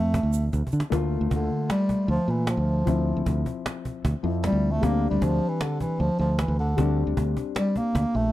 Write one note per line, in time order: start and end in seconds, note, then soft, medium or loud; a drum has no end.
0.00 0.19 F2 medium
0.00 0.87 F3 medium
0.00 0.49 A3 medium
0.00 0.88 C4 medium
0.00 0.88 E4 medium
0.14 cajon bass loud
0.14 cajon slap soft
0.23 0.49 D2 medium
0.33 cajon slap soft
0.33 shaker soft
0.53 0.62 D2 medium
0.53 cajon bass medium
0.53 cajon slap soft
0.53 shaker soft
0.67 cajon bass medium
0.72 0.81 D3 medium
0.72 cajon slap soft
0.72 shaker soft
0.80 cajon slap medium
0.90 1.18 D2 medium
0.90 2.82 A3 medium
0.90 2.83 A#3 medium
0.90 2.84 F4 medium
0.90 cajon bass loud
1.12 cajon slap soft
1.21 1.30 D2 medium
1.31 1.48 D2 medium
1.31 1.68 D3 medium
1.31 cajon bass medium
1.31 cajon slap soft
1.51 cajon slap soft
1.70 2.07 G3 medium
1.70 cajon slap loud
1.89 cajon bass medium
2.08 2.17 D2 medium
2.08 2.32 F3 medium
2.08 cajon slap soft
2.28 2.54 A#2 medium
2.28 2.51 E3 medium
2.28 cajon slap soft
2.47 3.47 F3 medium
2.47 cajon slap loud
2.57 2.83 D2 medium
2.67 cajon slap soft
2.85 3.13 D2 medium
2.85 4.20 F3 medium
2.85 4.21 C4 medium
2.85 4.21 E4 medium
2.85 cajon bass loud
3.07 cajon slap soft
3.16 3.25 D2 medium
3.26 3.43 D2 medium
3.26 cajon bass medium
3.46 cajon bass medium
3.66 cajon slap loud
3.85 cajon bass medium
4.05 4.13 D2 medium
4.05 cajon bass loud
4.23 4.50 F2 medium
4.23 4.82 F3 medium
4.23 4.81 C4 soft
4.23 4.83 E4 medium
4.23 cajon slap soft
4.44 4.73 G3 loud
4.44 cajon slap loud
4.52 4.79 D2 medium
4.63 cajon slap soft
4.71 4.86 A3 loud
4.81 5.08 D2 medium
4.81 6.73 G3 medium
4.81 5.09 A#3 loud
4.81 6.74 C4 medium
4.81 6.75 D4 medium
4.81 cajon bass loud
5.02 cajon slap soft
5.10 5.20 D2 medium
5.10 5.25 G3 medium
5.21 5.39 D2 medium
5.21 5.50 F3 medium
5.21 cajon bass loud
5.49 5.63 E3 medium
5.61 5.80 D3 medium
5.61 cajon slap loud
5.80 6.01 E3 medium
5.80 cajon bass medium
6.00 6.08 D2 medium
6.00 6.19 F3 medium
6.00 cajon slap soft
6.19 6.45 D2 medium
6.19 6.41 F3 medium
6.19 cajon slap soft
6.39 6.59 E3 medium
6.39 cajon slap loud
6.48 6.74 D2 medium
6.58 7.13 D3 medium
6.58 cajon slap soft
6.77 7.04 D2 medium
6.77 8.32 G3 medium
6.77 8.32 C4 medium
6.77 8.32 D4 medium
6.77 cajon bass loud
6.97 cajon slap soft
7.07 7.16 D2 medium
7.17 7.34 D2 medium
7.17 cajon bass loud
7.17 cajon slap soft
7.37 cajon bass medium
7.56 7.79 G3 medium
7.56 cajon slap loud
7.76 8.18 A#3 loud
7.76 cajon bass medium
7.76 cajon slap soft
7.95 8.03 D2 medium
7.95 cajon bass loud
8.15 8.32 A#1 medium
8.15 8.32 A3 medium
8.15 cajon slap soft